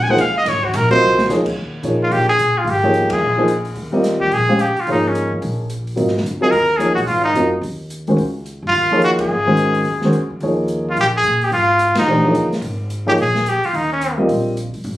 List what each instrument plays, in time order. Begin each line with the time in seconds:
Already playing: upright bass A#1
0.03 trumpet G#5
0.08 grand piano F3 A#3 D#4 G#4 C5, trumpet F#5, kick
0.18 upright bass C#2, trumpet F5, hi-hat pedal, ride
0.38 trumpet D#5
0.45 upright bass G#1, trumpet C#5, snare, ride
0.63 trumpet F#4, kick
0.73 upright bass A#1, trumpet A#4, hi-hat pedal, ride
0.91 grand piano F#3 C4 F4 A#4 D#5, trumpet C5, kick, ride
1.00 upright bass C2
1.18 snare
1.27 upright bass C#2, grand piano F3 A#3 D#4 G#4 C#5, snare, hi-hat pedal
1.46 kick, crash
1.55 upright bass D#2
1.83 upright bass A#2, grand piano F3 A#3 D#4 G#4 C#5, closed hi-hat
2.03 trumpet F4
2.10 upright bass A#1, trumpet G4, open hi-hat
2.29 trumpet G#4
2.38 upright bass A#2, closed hi-hat
2.58 trumpet F4
2.64 upright bass G#1, open hi-hat
2.70 trumpet G4
2.83 grand piano F3 A#3 D#4 G#4 C#5
2.94 closed hi-hat
3.02 upright bass C#2
3.10 upright bass E2, trumpet G#4, kick, ride
3.20 upright bass A#1
3.37 grand piano F3 A#3 D#4 G#4 C5
3.48 closed hi-hat
3.65 open hi-hat
3.75 upright bass D#2, open hi-hat
3.92 grand piano G3 C4 F4 A#4 D#5
4.04 snare, closed hi-hat
4.21 trumpet G4, kick
4.31 upright bass A#1, trumpet G#4, open hi-hat
4.49 grand piano G#3 C#4 G4 C5 F5
4.59 trumpet G4, closed hi-hat
4.75 muted upright bass stroke, open hi-hat
4.80 trumpet F4
4.87 upright bass G#1, grand piano F3 A#3 D#4 G#4 C#5, open hi-hat
4.91 trumpet D#4
5.08 trumpet C#4
5.15 closed hi-hat
5.32 upright bass E2
5.42 upright bass A#1, open hi-hat
5.70 closed hi-hat
5.87 open hi-hat
5.96 upright bass G#1, grand piano F#3 C4 F4 A#4 D#5, open hi-hat
6.08 snare
6.17 snare
6.24 upright bass G1, closed hi-hat
6.41 grand piano F#3 C4 F4 A#4 D#5, trumpet G#4
6.51 upright bass D#2, trumpet A#4, open hi-hat
6.77 grand piano F3 A#3 D#4 G#4 C#5, trumpet G#4, closed hi-hat
6.95 upright bass A#1, trumpet F#4, open hi-hat
7.07 upright bass G#1, trumpet F4, open hi-hat
7.24 trumpet D#4
7.34 upright bass F#1, grand piano F#3 C4 F4 A#4 D#5, closed hi-hat
7.61 upright bass D#2, open hi-hat
7.90 closed hi-hat
8.07 grand piano D#3 G#3 C#4 F#4 C5, kick, open hi-hat
8.17 upright bass C#2, open hi-hat
8.46 closed hi-hat
8.62 upright bass G1
8.67 trumpet F4
8.73 upright bass D#2, open hi-hat
8.91 grand piano F3 A#3 D#4 G#4 C#5
9.02 trumpet F#4, closed hi-hat
9.19 trumpet G#4, muted upright bass stroke, kick, ride
9.29 upright bass G#1
9.46 grand piano D#3 G#3 C#4 F#4 C5
9.57 closed hi-hat
9.74 open hi-hat
9.84 upright bass D#2, open hi-hat
10.01 grand piano D#3 G#3 C#4 F#4 C5, snare
10.13 closed hi-hat
10.30 upright bass E2
10.40 upright bass D#2, grand piano F3 A#3 D#4 G#4 C#5, open hi-hat
10.68 closed hi-hat
10.90 trumpet F4
10.96 upright bass A#1, open hi-hat
11.00 trumpet G4
11.17 trumpet G#4
11.23 upright bass A#2, closed hi-hat
11.41 trumpet G4, open hi-hat
11.51 upright bass G#1, trumpet F4, open hi-hat
11.79 closed hi-hat
11.95 trumpet D#4, muted upright bass stroke, snare, ride
12.07 upright bass A#1, grand piano E3 A3 D4 G4 C5
12.24 grand piano F3 A#3 D#4 G#4 C#5
12.34 upright bass D2, closed hi-hat
12.52 snare, open hi-hat
12.61 upright bass G#1, open hi-hat
12.90 closed hi-hat
13.06 grand piano F3 A#3 D#4 G#4 C#5, trumpet G4
13.18 upright bass A#1, trumpet G#4, open hi-hat
13.35 snare
13.46 trumpet G4, closed hi-hat
13.63 trumpet F4, open hi-hat
13.73 upright bass D#2, trumpet D#4, open hi-hat
13.92 trumpet C#4
14.01 closed hi-hat
14.17 grand piano G3 C4 F4 A#4 D#5
14.29 upright bass A#1, open hi-hat
14.57 closed hi-hat
14.74 muted upright bass stroke, open hi-hat
14.84 upright bass G#1, open hi-hat